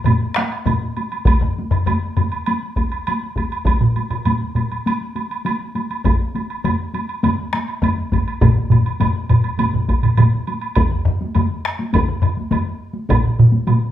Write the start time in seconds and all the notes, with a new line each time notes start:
0.04 taiko low-mid, taiko mid, taiko high, high woodblock
0.22 taiko high
0.34 taiko rim
0.36 taiko rim, taiko high, high woodblock
0.52 taiko high, high woodblock
0.66 taiko low-mid, taiko mid, taiko high, high woodblock
0.82 taiko high
0.97 taiko high, high woodblock
1.12 taiko high, high woodblock
1.25 taiko, taiko high, high woodblock
1.41 taiko low-mid, taiko high
1.58 taiko high
1.71 taiko low-mid, high woodblock
1.86 taiko low-mid, taiko high, high woodblock
2.03 taiko high
2.17 taiko low-mid, taiko high, high woodblock
2.32 taiko high, high woodblock
2.46 taiko high, high woodblock
2.63 taiko high
2.76 taiko, taiko high, high woodblock
2.92 taiko high, high woodblock
3.07 taiko high, high woodblock
3.23 taiko high
3.36 taiko, taiko high, high woodblock
3.52 taiko high, high woodblock
3.65 taiko, taiko high, high woodblock
3.81 taiko mid, taiko high
3.96 taiko high, high woodblock
4.10 taiko mid, high woodblock
4.25 taiko mid, taiko high, high woodblock
4.42 taiko high
4.55 taiko mid, taiko high, high woodblock
4.72 taiko high, high woodblock
4.86 taiko high, high woodblock
5.01 taiko high
5.15 taiko high, high woodblock
5.31 taiko high, high woodblock
5.45 taiko high, high woodblock
5.61 taiko high
5.75 taiko high, high woodblock
5.91 taiko high, high woodblock
6.04 taiko, taiko low-mid, taiko high, high woodblock
6.20 taiko high
6.35 taiko high, high woodblock
6.50 high woodblock
6.64 taiko low-mid, taiko high, high woodblock
6.79 taiko high
6.94 taiko high, high woodblock
7.09 high woodblock
7.23 taiko low-mid, taiko high, high woodblock
7.39 taiko high
7.53 taiko rim, taiko high, high woodblock
7.68 taiko high, high woodblock
7.82 taiko low-mid, taiko high, high woodblock
7.98 taiko high
8.12 taiko, taiko low-mid, taiko high, high woodblock
8.27 taiko high, high woodblock
8.41 taiko, taiko low-mid, taiko mid, taiko high, high woodblock
8.56 taiko high
8.70 taiko low-mid, taiko mid, taiko high, high woodblock
8.86 high woodblock
9.00 taiko low-mid, taiko mid, taiko high, high woodblock
9.15 taiko high
9.29 taiko low-mid, taiko mid, high woodblock
9.44 taiko high, high woodblock
9.58 taiko low-mid, taiko mid, taiko high, high woodblock
9.73 taiko low-mid, taiko mid, taiko high
9.89 taiko, taiko high, high woodblock
10.03 taiko low-mid, taiko mid, taiko high, high woodblock
10.17 taiko low-mid, taiko mid, taiko high, high woodblock
10.34 taiko high
10.47 taiko high, high woodblock
10.61 taiko high, high woodblock
10.75 taiko, taiko low-mid, taiko high, high woodblock
10.91 taiko low-mid
11.05 taiko low-mid
11.21 taiko high
11.35 taiko low-mid, taiko high, high woodblock
11.65 taiko rim
11.79 taiko high
11.93 taiko, taiko low-mid, taiko high, high woodblock
12.08 taiko low-mid
12.22 taiko low-mid, high woodblock
12.37 taiko high
12.51 taiko low-mid, taiko high, high woodblock
12.94 taiko high
13.09 taiko, taiko mid, taiko high, high woodblock
13.24 taiko mid
13.39 taiko mid
13.52 taiko high
13.67 taiko mid, taiko high, high woodblock